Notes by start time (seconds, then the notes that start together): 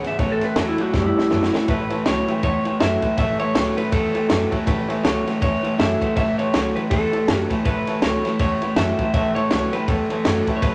Already playing: G#2
0.03 E2 C#3 B4 E5 G#5, muted upright bass stroke, snare, ride
0.07 E5
0.19 A1 A2 E3 C#5 E5 A5, kick, ride
0.32 A4
0.40 C#5 E5 G#5, muted upright bass stroke, snare, ride
0.45 B4
0.56 E2 A2 E3 F#3 A3 C#4 E4 A4 C#5 E5 A5, snare, ride
0.69 E4
0.78 A2 F#3 C#4 E4 F#4 C#5 E5 A5, muted upright bass stroke, ride
0.93 E2 F#2 A2 G3 E4 C#5 E5 A5, kick, snare
1.06 E4
1.15 C#5 E5 A5, muted upright bass stroke, snare
1.30 F#2 A2 E3 F#3 A3 C#4 E4 C#5 E5 A5, snare
1.43 snare
1.53 A2 F#3 C#4 E4 C#5 E5 F#5, snare
1.68 A1 A2 E3 B4 C#5 E5 A5, kick, ride
1.90 A2 E3 C#5 E5 A5, muted upright bass stroke, ride
2.05 C#2 A2 E3 F#3 A3 C#4 E4 C#5 E5 A5, snare, ride
2.27 A2 E3 C#4 E4 C#5 E5 G5, muted upright bass stroke, ride
2.43 E2 A2 E3 C#5 E5 A5, kick, ride
2.64 A2 E3 C#5 E5 G5, muted upright bass stroke, ride
2.80 F#2 A2 E3 F#3 A3 C#4 E4 C#5 E5 A5, snare, ride
3.02 A2 E3 C#4 E4 C#5 E5 A5, kick, ride
3.17 A1 A2 E3 C#5 E5 A5, kick, ride
3.39 A2 E3 C#5 E5 A5, ride
3.54 C#2 A2 E3 F#3 A3 C#4 E4 C#5 E5 A5, snare, ride
3.76 A2 E3 C#4 E4 B4 C#5 E5 A5, muted upright bass stroke, ride
3.92 E2 A2 E3 A4 C#5 E5 A5, kick, ride
4.14 A2 E3 C#5 E5 G5, muted upright bass stroke, ride
4.28 F#2 A2 E3 F#3 A3 C#4 E4 C#5 E5 A5, snare, ride
4.51 A2 E3 C#4 E4 C#5 E5 A5, kick, ride
4.66 A1 A2 E3 B4 C#5 E5 A5, kick, ride
4.88 A2 E3 C#5 E5 A5, muted upright bass stroke, ride
5.03 C#2 A2 E3 F#3 A3 C#4 E4 C#5 B5, snare, ride
5.26 A2 E3 C#4 E4 C#5 E5 A5, muted upright bass stroke, snare, ride
5.41 E2 A2 E3 C#5 E5 A5, kick, ride
5.63 A2 E3 C#5 E5 A5, muted upright bass stroke, ride
5.78 F#2 A2 E3 F#3 A3 C#4 E4 C#5 E5 A5, snare, ride
6.01 A2 E3 C#5 E5 F#5, kick, ride
6.16 A1 A2 E3 C#5 E5 A5, kick, ride
6.38 A2 E3 C#5 E5 A5, muted upright bass stroke, ride
6.53 C#2 A2 E3 F#3 A3 C#4 E4 C#5 E5 F#5, snare, ride
6.75 A2 E3 C#4 E4 B4 C#5 E5 A5, muted upright bass stroke, ride
6.90 E2 A2 E3 A4 C#5 E5 B5, kick, ride
7.12 A2 E3 C#5 E5 A5, muted upright bass stroke, ride
7.27 F#2 A2 E3 F#3 A3 C#4 E4 C#5 E5 A5, snare, ride
7.34 G4
7.50 A2 E3 C#4 E4 C#5 E5 A5, kick, ride
7.64 A1 A2 E3 B4 C#5 E5 A5, kick, ride
7.87 A2 E3 C#5 E5 A5, muted upright bass stroke, ride
8.02 C#2 A2 E3 F#3 A3 C#4 E4 C#5 E5 B5, snare, ride
8.25 A2 E3 C#4 E4 C#5 E5 A5, muted upright bass stroke, snare, ride
8.39 E2 A2 E3 C#5 E5 A5, kick, ride
8.62 A2 E3 C#5 E5 B5, muted upright bass stroke, ride
8.76 F#2 A2 E3 F#3 A3 C#4 E4 C#5 E5 A5, snare, ride
8.99 A2 E3 C#4 E4 C#5 E5 A5, muted upright bass stroke, kick, ride
9.14 A1 A2 E3 C#5 E5 A5, kick, ride
9.35 A2 E3 C#5 E5 A5, muted upright bass stroke, ride
9.51 C#2 A2 E3 F#3 A3 C#4 E4 C#5 E5 A5, snare, ride
9.73 A2 E3 C#4 E4 B4 C#5 E5 G5, ride
9.88 E2 A2 E3 A4 C#5 E5 A5, kick, ride
10.10 A2 E3 C#5 E5 A5, muted upright bass stroke, ride
10.25 F#2 A2 E3 F#3 A3 C#4 E4 C#5 E5 A5, snare, ride
10.47 A2 E3 C#4 E4 C#5 E5 A5, kick, ride
10.57 C#5
10.62 A1 A2 E3 B4 C#5 E5 A5, kick, ride